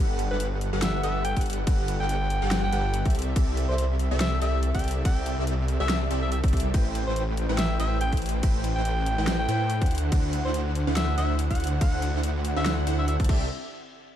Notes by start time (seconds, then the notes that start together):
Already playing: G1 G3 G4 A4 B4 F#5
0.00 F#5
0.19 closed hi-hat
0.31 G1 G3 G4 A4 B4 F#5
0.40 closed hi-hat
0.61 closed hi-hat
0.73 G1 G3 G4 A4 B4 F#5
0.82 E5, snare, closed hi-hat
1.03 G1 G3 G4 A4 B4 E5 F#5, closed hi-hat
1.25 G5, closed hi-hat
1.37 G1 G3 G4 A4 B4 F#5, kick, closed hi-hat
1.41 closed hi-hat
1.46 closed hi-hat
1.50 closed hi-hat
1.53 closed hi-hat
1.67 G1 G3 G4 A4 B4 F#5, kick, closed hi-hat, crash
1.88 closed hi-hat
2.00 G1 G3 G4 A4 B4 F#5 G5
2.09 closed hi-hat
2.30 closed hi-hat
2.42 G1 G3 G4 A4 B4 F#5
2.51 snare, closed hi-hat
2.63 G5
2.72 G1 G3 G4 A4 B4 F#5, closed hi-hat
2.94 closed hi-hat
3.05 C4 G4 A4 D5 E5, kick, closed hi-hat
3.10 closed hi-hat
3.15 closed hi-hat
3.19 closed hi-hat
3.22 closed hi-hat
3.36 C4 G4 A4 D5 E5, kick, closed hi-hat, crash
3.57 closed hi-hat
3.69 C2 C4 G4 A4 C5 D5 E5
3.78 closed hi-hat
3.99 closed hi-hat
4.11 C2 C4 G4 A4 D5 E5
4.20 E5, snare, closed hi-hat
4.41 C2 C4 G4 A4 D5 E5, closed hi-hat
4.63 closed hi-hat
4.74 C4 G4 A4 D5 E5 G5, kick, closed hi-hat
4.79 closed hi-hat
4.84 closed hi-hat
4.88 closed hi-hat
4.91 closed hi-hat
5.05 C2 C4 G4 A4 D5 E5 G5, kick, closed hi-hat, crash
5.26 closed hi-hat
5.38 C2 C4 G4 A4 D5 E5
5.47 closed hi-hat
5.68 closed hi-hat
5.80 C2 C4 G4 A4 D5 E5
5.89 snare, closed hi-hat
6.11 C2 C4 G4 A4 D5 E5, closed hi-hat
6.22 E5
6.32 E5, closed hi-hat
6.44 C4 G4 A4 D5 E5, kick, closed hi-hat
6.48 closed hi-hat
6.53 kick, closed hi-hat
6.57 closed hi-hat
6.60 closed hi-hat
6.74 A1 A3 E4 B4 C5 G5, kick, closed hi-hat, crash
6.95 closed hi-hat
7.07 A1 A3 E4 B4 C5 G5
7.16 closed hi-hat
7.37 closed hi-hat
7.49 A1 A3 E4 B4 C5 G5
7.58 E5, snare, closed hi-hat
7.80 A1 A3 E4 B4 C5 E5 G5, closed hi-hat
8.01 G5, closed hi-hat
8.13 A1 A3 E4 B4 C5 G5, kick, closed hi-hat
8.17 closed hi-hat
8.22 closed hi-hat
8.26 closed hi-hat
8.29 closed hi-hat
8.43 A3 E4 B4 C5 G5, kick, closed hi-hat, crash
8.64 closed hi-hat
8.76 A1 A3 E4 B4 C5 G5
8.85 closed hi-hat
9.06 closed hi-hat
9.18 A1 A3 E4 B4 C5 G5
9.27 snare, closed hi-hat
9.39 G5
9.49 A2 A3 E4 B4 C5 G5, closed hi-hat
9.70 closed hi-hat
9.81 D2 D3 D4 E4 C5 F#5, kick, closed hi-hat
9.86 closed hi-hat
9.91 closed hi-hat
9.95 closed hi-hat
9.98 closed hi-hat
10.12 D2 D3 D4 E4 C5 F#5, kick, closed hi-hat, crash
10.33 closed hi-hat
10.45 D2 D3 D4 E4 C5 F#5
10.54 closed hi-hat
10.75 closed hi-hat
10.87 D2 D3 D4 E4 C5 F#5
10.96 E5, snare, closed hi-hat
11.18 D2 D3 D4 E4 C5 E5 F#5, closed hi-hat
11.39 closed hi-hat
11.50 D3 D4 E4 C5 F#5, kick, closed hi-hat
11.55 closed hi-hat
11.60 closed hi-hat
11.64 closed hi-hat
11.67 closed hi-hat
11.81 D2 D3 D4 E4 C5 F#5, kick, closed hi-hat, crash
12.02 closed hi-hat
12.14 D2 D3 D4 E4 C5 F#5
12.23 closed hi-hat
12.45 closed hi-hat
12.56 D2 D3 D4 E4 C5 E5 F#5
12.66 snare, closed hi-hat
12.87 D2 D3 D4 E4 C5 F#5, closed hi-hat
12.99 E5
13.08 E5, closed hi-hat
13.20 D2 D3 D4 E4 C5 A5, kick, closed hi-hat
13.24 closed hi-hat
13.29 C2 C4 G4 A4 D5 E5, kick, crash